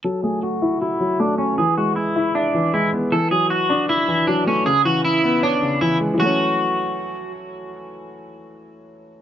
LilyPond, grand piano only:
\new Staff \with { instrumentName = "Grand piano" } { \clef bass \time 4/4 \key fis \minor \tempo 4 = 156 fis8 a4 e'8 fis'8 fis8 a8 cis'8 | e8 gis4 e'8 e''8 e8 gis8 b8 | e8 fis4 d'8 e'8 e8 fis8 a8 | cis8 e4 b8 cis''8 cis8 e8 gis8 |
<e fis a cis'>1~ | <e fis a cis'>1 | }